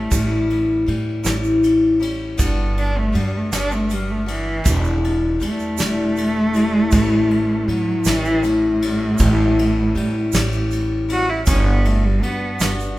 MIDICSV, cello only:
0, 0, Header, 1, 2, 480
1, 0, Start_track
1, 0, Tempo, 756620
1, 72, Time_signature, 6, 3, 24, 8
1, 8240, End_track
2, 0, Start_track
2, 0, Title_t, "Cello"
2, 0, Program_c, 0, 42
2, 0, Note_on_c, 0, 57, 78
2, 303, Note_off_c, 0, 57, 0
2, 1770, Note_on_c, 0, 62, 87
2, 1889, Note_on_c, 0, 57, 84
2, 1899, Note_off_c, 0, 62, 0
2, 2004, Note_on_c, 0, 55, 76
2, 2013, Note_off_c, 0, 57, 0
2, 2135, Note_on_c, 0, 57, 70
2, 2145, Note_off_c, 0, 55, 0
2, 2238, Note_off_c, 0, 57, 0
2, 2250, Note_on_c, 0, 62, 93
2, 2373, Note_on_c, 0, 57, 78
2, 2382, Note_off_c, 0, 62, 0
2, 2484, Note_on_c, 0, 55, 74
2, 2494, Note_off_c, 0, 57, 0
2, 2604, Note_on_c, 0, 57, 73
2, 2614, Note_off_c, 0, 55, 0
2, 2712, Note_off_c, 0, 57, 0
2, 2728, Note_on_c, 0, 52, 76
2, 3188, Note_off_c, 0, 52, 0
2, 3441, Note_on_c, 0, 57, 94
2, 4881, Note_on_c, 0, 54, 84
2, 4890, Note_off_c, 0, 57, 0
2, 5111, Note_on_c, 0, 52, 100
2, 5121, Note_off_c, 0, 54, 0
2, 5354, Note_on_c, 0, 45, 97
2, 5363, Note_off_c, 0, 52, 0
2, 6769, Note_off_c, 0, 45, 0
2, 7056, Note_on_c, 0, 66, 87
2, 7165, Note_on_c, 0, 64, 77
2, 7175, Note_off_c, 0, 66, 0
2, 7272, Note_off_c, 0, 64, 0
2, 7281, Note_on_c, 0, 61, 80
2, 7390, Note_off_c, 0, 61, 0
2, 7414, Note_on_c, 0, 59, 81
2, 7521, Note_on_c, 0, 57, 86
2, 7531, Note_off_c, 0, 59, 0
2, 7648, Note_on_c, 0, 55, 86
2, 7658, Note_off_c, 0, 57, 0
2, 7756, Note_on_c, 0, 59, 88
2, 7765, Note_off_c, 0, 55, 0
2, 7989, Note_off_c, 0, 59, 0
2, 8240, End_track
0, 0, End_of_file